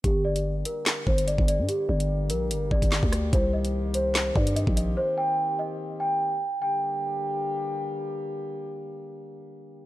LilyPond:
<<
  \new Staff \with { instrumentName = "Celesta" } { \time 4/4 \key g \minor \tempo 4 = 146 g'8 d''4 bes'4 c''8 d''8 d''8 | g'8 d''4 bes'4 d''4. | c''8 ees''4 c''4 d''8 ees''8 ees''8 | c''8 g''4 ees''4 g''4. |
g''2. r4 | r1 | }
  \new Staff \with { instrumentName = "Brass ensemble" } { \clef bass \time 4/4 \key g \minor << { g'1~ | g'1~ | g'1~ | g'1 |
<d g bes g'>1~ | <d g bes g'>1 | } \\ { <d g bes>1~ | <d g bes>1 | <ees c'>1~ | <ees c'>1 |
r1 | r1 | } >> }
  \new Staff \with { instrumentName = "808-style bass" } { \clef bass \time 4/4 \key g \minor g,,4. r4 g,,8. g,,8 g,16 | r8 g,,4 bes,,8 g,,8 g,,16 g,,8 d,8. | c,2~ c,8 g,8. bes,,8. | r1 |
r1 | r1 | }
  \new DrumStaff \with { instrumentName = "Drums" } \drummode { \time 4/4 <hh bd>8. hh16 r8 hh8 <hc hh sn>8 bd16 hh16 hh16 bd16 hh8 | hh8. hh16 r8 hh8 hh8 bd16 <hh bd>16 <hc sn>16 bd16 <hh ss>8 | <hh bd>8. hh16 r8 hh8 <hc hh sn>8 bd16 hh16 hh16 bd16 hh8 | r4 r4 r4 r4 |
r4 r4 r4 r4 | r4 r4 r4 r4 | }
>>